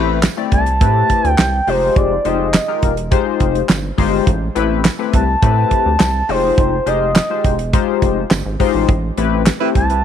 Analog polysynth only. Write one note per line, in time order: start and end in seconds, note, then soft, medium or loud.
0.00 0.18 A3 loud
0.00 0.18 C4 medium
0.00 0.18 E4 medium
0.00 0.18 G4 medium
0.00 0.19 B4 loud
0.37 0.61 A3 medium
0.37 0.61 C4 medium
0.37 0.62 E4 medium
0.37 0.62 G4 medium
0.37 0.62 D5 medium
0.80 1.29 A3 medium
0.80 1.29 C4 medium
0.80 1.29 E4 medium
0.80 1.29 G4 medium
0.80 1.29 B4 medium
1.67 2.13 G#3 medium
1.67 2.14 D#4 medium
1.67 2.14 F4 medium
1.67 2.14 G4 medium
1.67 2.14 C5 loud
2.25 2.49 G#3 medium
2.25 2.49 D#4 medium
2.25 2.49 F4 medium
2.25 2.49 G4 medium
2.25 2.49 C5 medium
2.68 2.92 G#3 medium
2.68 2.92 D#4 medium
2.68 2.92 F4 medium
2.68 2.92 G4 medium
2.68 2.93 A#4 medium
3.11 3.59 G#3 medium
3.11 3.60 D#4 medium
3.11 3.60 F4 medium
3.11 3.60 G4 medium
3.11 3.60 C5 loud
3.98 4.27 G#3 loud
3.98 4.27 D#4 medium
3.98 4.27 F4 medium
3.98 4.27 G4 medium
3.98 4.27 C5 loud
4.55 4.80 A3 loud
4.55 4.80 C4 medium
4.55 4.80 E4 medium
4.55 4.80 G4 medium
4.55 4.80 B4 loud
4.99 5.23 A3 medium
4.99 5.23 C4 medium
4.99 5.23 E4 medium
4.99 5.23 G4 medium
4.99 5.23 B4 medium
5.42 5.90 A3 medium
5.42 5.90 C4 medium
5.42 5.90 E4 medium
5.42 5.90 G4 medium
5.42 5.91 B4 medium
6.29 6.75 G#3 medium
6.29 6.75 D#4 medium
6.29 6.75 F4 medium
6.29 6.75 G4 medium
6.29 6.75 C5 medium
6.86 7.10 G#3 medium
6.86 7.11 D#4 medium
6.86 7.11 F4 medium
6.86 7.11 G4 medium
6.86 7.11 C5 medium
7.30 7.54 G#3 medium
7.30 7.54 D#4 medium
7.30 7.54 F4 medium
7.30 7.54 G4 medium
7.30 7.54 C5 medium
7.73 8.21 G#3 medium
7.73 8.21 D#4 medium
7.73 8.21 F4 medium
7.73 8.21 G4 medium
7.73 8.22 C5 loud
8.60 8.89 G#3 loud
8.60 8.89 D#4 loud
8.60 8.89 F4 medium
8.60 8.89 G4 medium
8.60 8.89 C5 loud
9.17 9.41 A3 medium
9.17 9.41 C4 medium
9.17 9.42 E4 medium
9.17 9.42 G4 medium
9.17 9.42 B4 loud
9.61 9.85 A3 medium
9.61 9.85 C4 medium
9.61 9.85 E4 medium
9.61 9.85 G4 medium
9.61 9.85 C5 medium